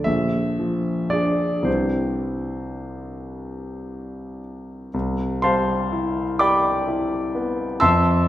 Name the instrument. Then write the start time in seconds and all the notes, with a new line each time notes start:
grand piano
0.04 A#1 E5
0.59 F3
1.10 D4 G#4 D5
1.62 C2 E3 C4 D4 G4 C5
4.94 C2
5.42 G3 C5 F5 A5 C6
5.92 E4
6.39 G4 D5 G5 B5 D6
6.88 E4
7.35 B3
7.80 F2 E5 A5 C6 E6